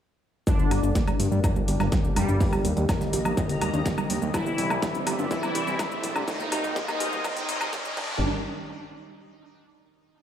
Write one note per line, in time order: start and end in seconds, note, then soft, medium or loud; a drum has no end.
0.47 1.10 D3 medium
0.47 0.54 G3 medium
0.47 2.39 A#3 medium
0.47 2.39 D4 medium
0.47 1.10 D4 loud
0.47 6.24 G4 medium
0.47 kick loud
0.47 closed hi-hat medium
0.47 mid tom soft
0.47 riser medium
0.47 shaker medium
0.59 0.67 D3 medium
0.59 shaker soft
0.71 0.80 G1 medium
0.71 0.79 G3 medium
0.71 snare soft
0.71 closed hi-hat medium
0.71 open hi-hat loud
0.71 low woodblock soft
0.71 shaker medium
0.83 0.92 G1 medium
0.83 0.91 D4 medium
0.83 mid tom medium
0.83 shaker soft
0.95 1.06 A#3 medium
0.95 kick loud
0.95 snare loud
0.95 closed hi-hat medium
0.95 mid tom soft
0.95 shaker medium
1.07 1.15 G3 loud
1.07 closed hi-hat soft
1.07 low woodblock soft
1.07 shaker soft
1.20 1.28 G2 medium
1.20 1.27 G3 medium
1.20 closed hi-hat medium
1.20 open hi-hat loud
1.20 shaker medium
1.32 1.40 G2 medium
1.32 1.36 G3 medium
1.32 shaker soft
1.44 1.51 G3 medium
1.44 kick loud
1.44 closed hi-hat medium
1.44 mid tom soft
1.44 low woodblock soft
1.44 shaker medium
1.56 1.63 G3 medium
1.56 mid tom medium
1.56 shaker soft
1.68 1.76 G1 loud
1.68 1.79 G4 medium
1.68 closed hi-hat medium
1.68 open hi-hat loud
1.68 shaker medium
1.80 1.89 G1 medium
1.80 1.91 G3 medium
1.80 snare medium
1.80 low woodblock soft
1.80 shaker soft
1.92 2.00 G3 medium
1.92 kick loud
1.92 snare loud
1.92 closed hi-hat medium
1.92 mid tom medium
1.92 shaker medium
2.04 2.12 D3 medium
2.04 shaker soft
2.16 2.25 F1 medium
2.16 2.79 G2 medium
2.16 2.79 G3 medium
2.16 2.24 G3 loud
2.16 closed hi-hat medium
2.16 open hi-hat loud
2.16 low woodblock medium
2.16 shaker medium
2.28 2.37 G1 medium
2.28 2.36 D4 medium
2.28 mid tom medium
2.28 shaker soft
2.40 4.32 D#3 medium
2.40 4.32 A#3 medium
2.40 2.52 A#3 medium
2.40 4.32 D#5 medium
2.40 4.32 A#5 medium
2.40 kick loud
2.40 open hi-hat medium
2.40 mid tom medium
2.40 shaker medium
2.53 2.60 G3 loud
2.53 low woodblock soft
2.53 shaker soft
2.65 2.73 D#2 medium
2.65 2.72 G3 medium
2.65 closed hi-hat medium
2.65 open hi-hat loud
2.65 shaker medium
2.77 2.85 D#2 medium
2.77 2.81 G3 medium
2.77 closed hi-hat soft
2.77 shaker soft
2.89 2.96 G3 medium
2.89 kick loud
2.89 snare loud
2.89 closed hi-hat medium
2.89 mid tom medium
2.89 low woodblock soft
2.89 shaker medium
3.01 3.08 G3 medium
3.01 snare soft
3.01 mid tom medium
3.01 shaker soft
3.13 3.22 A#1 medium
3.13 3.24 G4 medium
3.13 snare medium
3.13 closed hi-hat medium
3.13 open hi-hat loud
3.13 shaker medium
3.25 3.34 A#1 medium
3.25 3.36 G3 medium
3.25 low woodblock medium
3.25 shaker soft
3.37 3.45 G3 medium
3.37 kick loud
3.37 closed hi-hat medium
3.37 mid tom medium
3.37 shaker medium
3.49 3.57 D3 medium
3.49 open hi-hat medium
3.49 shaker soft
3.61 3.70 D#2 medium
3.61 3.69 G3 loud
3.61 closed hi-hat medium
3.61 open hi-hat loud
3.61 low woodblock medium
3.61 shaker medium
3.74 3.82 D#2 medium
3.74 3.81 D4 medium
3.74 closed hi-hat soft
3.74 mid tom medium
3.74 shaker soft
3.86 3.97 A#3 medium
3.86 kick loud
3.86 snare loud
3.86 closed hi-hat medium
3.86 mid tom medium
3.86 shaker medium
3.98 4.05 G3 loud
3.98 low woodblock medium
3.98 shaker soft
4.10 4.18 D#2 medium
4.10 4.17 G3 medium
4.10 closed hi-hat medium
4.10 open hi-hat loud
4.10 shaker medium
4.22 4.30 D#2 medium
4.22 4.26 G3 medium
4.22 shaker soft
4.34 6.26 C3 medium
4.34 4.97 E3 medium
4.34 4.42 G3 medium
4.34 6.26 C4 medium
4.34 4.97 E4 loud
4.34 6.26 D5 medium
4.34 6.26 E5 medium
4.34 kick loud
4.34 closed hi-hat medium
4.34 mid tom medium
4.34 low woodblock medium
4.34 shaker medium
4.46 4.54 G3 medium
4.46 mid tom medium
4.46 shaker soft
4.58 4.67 C2 medium
4.58 4.69 G4 medium
4.58 snare soft
4.58 closed hi-hat medium
4.58 open hi-hat loud
4.58 mid tom medium
4.58 shaker medium
4.70 4.79 C2 medium
4.70 4.82 G3 medium
4.70 low woodblock medium
4.70 shaker soft
4.82 4.90 G3 medium
4.82 kick loud
4.82 snare loud
4.82 closed hi-hat medium
4.82 mid tom medium
4.82 shaker medium
4.95 5.02 D3 medium
4.95 closed hi-hat soft
4.95 shaker soft
5.07 5.15 G1 loud
5.07 5.14 G3 medium
5.07 closed hi-hat medium
5.07 open hi-hat loud
5.07 mid tom medium
5.07 low woodblock medium
5.07 shaker medium
5.19 5.27 G1 medium
5.19 5.26 D4 medium
5.19 mid tom medium
5.19 shaker soft
5.31 5.94 E3 medium
5.31 5.38 G3 medium
5.31 5.94 E4 loud
5.31 kick loud
5.31 closed hi-hat medium
5.31 mid tom medium
5.31 shaker medium
5.43 5.50 G3 medium
5.43 low woodblock medium
5.43 shaker soft
5.55 5.64 C2 medium
5.55 5.66 G4 medium
5.55 closed hi-hat medium
5.55 open hi-hat loud
5.55 mid tom medium
5.55 shaker medium
5.67 5.76 C2 medium
5.67 5.78 G3 medium
5.67 snare medium
5.67 shaker soft
5.79 5.87 G3 medium
5.79 kick loud
5.79 snare loud
5.79 closed hi-hat medium
5.79 mid tom medium
5.79 low woodblock medium
5.79 shaker medium
5.91 5.99 D3 medium
5.91 mid tom medium
5.91 shaker soft
6.03 6.12 A#1 loud
6.03 6.11 G3 loud
6.03 closed hi-hat medium
6.03 open hi-hat loud
6.03 mid tom medium
6.03 shaker medium
6.16 6.24 C2 medium
6.16 6.23 D4 medium
6.16 low woodblock medium
6.16 shaker soft
6.28 6.74 D#3 medium
6.28 6.35 G3 medium
6.28 7.95 G#3 medium
6.28 6.74 D#4 loud
6.28 7.95 G#4 medium
6.28 7.95 A#4 medium
6.28 7.95 C5 medium
6.28 7.95 D#5 medium
6.28 kick loud
6.28 open hi-hat medium
6.28 mid tom medium
6.28 shaker medium
6.40 6.47 G3 medium
6.40 mid tom medium
6.40 shaker soft
6.52 6.60 G#1 medium
6.52 6.63 G4 medium
6.52 closed hi-hat medium
6.52 open hi-hat loud
6.52 mid tom medium
6.52 low woodblock medium
6.52 shaker medium
6.64 6.72 G#1 medium
6.64 6.74 G3 medium
6.64 closed hi-hat soft
6.64 mid tom loud
6.64 mid tom medium
6.64 shaker soft
6.76 7.23 D#3 medium
6.76 6.83 G3 medium
6.76 7.22 D#4 loud
6.76 kick loud
6.76 snare loud
6.76 closed hi-hat medium
6.76 mid tom medium
6.76 shaker medium
6.88 6.96 G3 medium
6.88 snare soft
6.88 mid tom medium
6.88 low woodblock medium
6.88 shaker soft
7.00 7.09 D#1 medium
7.00 7.11 G4 medium
7.00 snare medium
7.00 closed hi-hat medium
7.00 open hi-hat loud
7.00 mid tom loud
7.00 shaker medium
7.12 7.21 D#1 medium
7.12 7.23 G3 medium
7.12 mid tom medium
7.12 shaker soft
7.24 7.47 D#3 medium
7.24 7.32 G3 medium
7.24 7.47 D#4 loud
7.24 kick loud
7.24 closed hi-hat medium
7.24 mid tom loud
7.24 low woodblock medium
7.24 shaker medium
7.31 mid tom medium
7.37 7.44 G3 medium
7.37 mid tom loud
7.37 open hi-hat medium
7.37 mid tom medium
7.37 shaker soft
7.43 mid tom medium
7.49 7.57 G#1 medium
7.49 7.71 D#3 medium
7.49 7.56 G3 medium
7.49 7.71 D#4 loud
7.49 closed hi-hat medium
7.49 open hi-hat loud
7.49 mid tom loud
7.49 shaker medium
7.55 mid tom loud
7.61 7.69 G#1 medium
7.61 7.68 G3 medium
7.61 closed hi-hat soft
7.61 mid tom medium
7.61 low woodblock medium
7.61 shaker soft
7.67 mid tom medium
7.73 7.95 D#3 medium
7.73 7.80 G3 medium
7.73 7.95 D#4 loud
7.73 kick loud
7.73 snare loud
7.73 closed hi-hat medium
7.73 mid tom loud
7.73 shaker medium
7.79 mid tom medium
7.85 7.92 G3 medium
7.85 mid tom medium
7.85 shaker soft
7.91 mid tom medium
7.97 8.20 G1 loud
7.97 8.20 G3 medium
7.97 8.20 D4 medium
7.97 8.15 D4 medium
7.97 8.20 G4 medium
7.97 8.20 A#4 medium
7.97 kick loud
7.97 crash medium